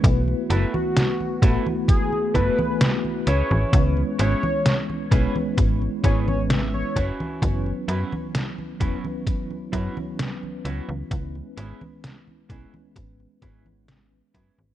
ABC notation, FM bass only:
X:1
M:4/4
L:1/16
Q:1/4=65
K:C#m
V:1 name="FM bass" clef=bass
B,,, z F,,, z3 A,,, z3 F,,, z3 C,, G,,, | C,, z G,,, z3 B,,, z G,,, z G,,,3 z F,,, z | F,,, z F,, z3 E,,, z3 F,, z3 C,, C,, | C,, z G,,, z3 B,,, z G,,, z G,,,3 z F,, G,,, |]